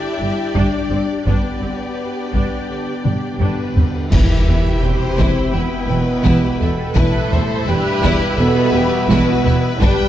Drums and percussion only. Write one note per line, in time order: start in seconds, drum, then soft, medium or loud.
0.55 taiko medium
1.27 taiko medium
2.34 taiko medium
3.05 taiko mid medium
3.41 taiko low-mid medium
3.77 taiko low medium
4.12 concert bass drum medium
4.12 taiko medium
4.12 crash medium
4.48 taiko low medium
5.19 taiko medium
6.26 taiko medium
6.61 taiko low medium
6.96 taiko loud
7.33 taiko low medium
8.04 taiko medium
9.10 taiko medium
9.46 taiko low medium
9.82 taiko loud